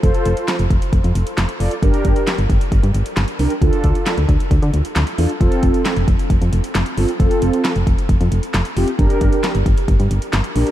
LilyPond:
<<
  \new Staff \with { instrumentName = "Analog polysynth" } { \time 4/4 \key f \major \tempo 4 = 134 <f' a' c''>4 r2 r8 <f' a' d''>8 | <d' g' bes'>4 r2 r8 <d' g' bes'>8 | <d' f' a'>4 r2 r8 <d' f' a'>8 | <c' f' a'>4 r2 r8 <c' f' a'>8 |
<c' f' a'>4 r2 r8 <c' f' g'>8 | <d' g' bes'>4 r2 r8 <d' g' bes'>8 | }
  \new Staff \with { instrumentName = "FM bass" } { \clef bass \time 4/4 \key f \major f,,16 r16 f,,16 r8 f,,16 f,,16 r16 f,,16 f,16 f,,16 r16 f,,16 r16 f,,16 r16 | g,,16 r16 g,,16 r8 g,,16 g,,16 r16 g,,16 g,16 g,,16 r16 g,,16 r16 c,16 r16 | d,16 r16 d,16 r8 d,16 d,16 r16 d,16 d16 d,16 r16 d,16 r16 e,16 r16 | f,,16 r16 f,,16 r8 f,,16 f,,16 r16 f,,16 f,16 f,,16 r16 f,,16 r16 g,,16 r16 |
f,,16 r16 f,,16 r8 f,,16 f,,16 r16 f,,16 f,16 f,,16 r16 f,,16 r16 f,,16 r16 | g,,16 r16 g,,16 r8 g,,16 g,,16 r16 g,,16 g,16 g,,16 r16 g,,16 r16 bes,,16 r16 | }
  \new DrumStaff \with { instrumentName = "Drums" } \drummode { \time 4/4 <hh bd>16 hh16 hh16 hh16 <hc hh sn>16 hh16 <hh bd>16 hh16 <hh bd>16 hh16 hh16 hh16 <hc hh sn>16 hh16 hho16 hh16 | <hh bd>16 hh16 <hh bd>16 hh16 <hc hh sn>16 hh16 <hh bd>16 hh16 <hh bd>16 hh16 hh16 hh16 <hc hh sn>16 hh16 hho16 hh16 | <hh bd>16 hh16 <hh bd>16 hh16 <hc hh sn>16 hh16 <hh bd>16 hh16 <hh bd>16 hh16 hh16 hh16 <hc hh sn>16 hh16 hho16 hh16 | <hh bd>16 hh16 <hh bd>16 hh16 <hc hh sn>16 hh16 <hh bd>16 hh16 <hh bd>16 hh16 hh16 hh16 <hc hh sn>16 hh16 hho16 hh16 |
<hh bd>16 hh16 hh16 hh16 <hc hh sn>16 hh16 <hh bd>16 hh16 <hh bd>16 hh16 hh16 hh16 <hc hh sn>16 hh16 hho16 hh16 | <hh bd>16 hh16 <hh bd>16 hh16 <hc hh sn>16 hh16 <hh bd>16 hh16 <hh bd>16 hh16 hh16 hh16 <hc hh sn>16 hh16 hho16 hh16 | }
>>